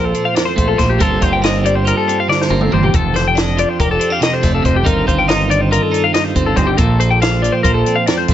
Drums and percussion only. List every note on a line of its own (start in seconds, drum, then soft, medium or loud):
0.14 closed hi-hat soft
0.36 snare loud
0.36 closed hi-hat medium
0.58 kick medium
0.58 closed hi-hat medium
0.79 kick medium
0.79 snare soft
0.79 closed hi-hat medium
1.00 kick loud
1.00 closed hi-hat medium
1.22 kick medium
1.22 closed hi-hat soft
1.43 snare loud
1.43 closed hi-hat medium
1.65 closed hi-hat medium
1.87 closed hi-hat medium
2.09 closed hi-hat soft
2.31 snare soft
2.42 snare medium
2.50 high tom medium
2.61 mid tom medium
2.72 mid tom medium
2.83 floor tom medium
2.94 kick loud
2.94 closed hi-hat medium
3.16 snare soft
3.16 closed hi-hat medium
3.37 snare loud
3.37 closed hi-hat medium
3.58 closed hi-hat medium
3.80 kick medium
3.80 closed hi-hat medium
4.01 closed hi-hat medium
4.22 snare loud
4.22 closed hi-hat medium
4.43 kick medium
4.43 snare soft
4.43 closed hi-hat medium
4.65 kick medium
4.65 closed hi-hat soft
4.86 kick medium
4.86 closed hi-hat medium
5.08 kick medium
5.08 closed hi-hat soft
5.29 snare loud
5.29 closed hi-hat medium
5.51 closed hi-hat medium
5.72 closed hi-hat medium
5.94 closed hi-hat medium
6.14 snare loud
6.14 closed hi-hat medium
6.36 kick medium
6.36 closed hi-hat medium
6.57 kick medium
6.57 closed hi-hat medium
6.78 kick loud
6.78 closed hi-hat medium
7.00 closed hi-hat medium
7.22 snare loud
7.22 closed hi-hat medium
7.44 closed hi-hat medium
7.64 kick medium
7.64 closed hi-hat medium
7.86 closed hi-hat medium
8.07 snare loud
8.07 closed hi-hat medium
8.28 kick medium
8.28 closed hi-hat medium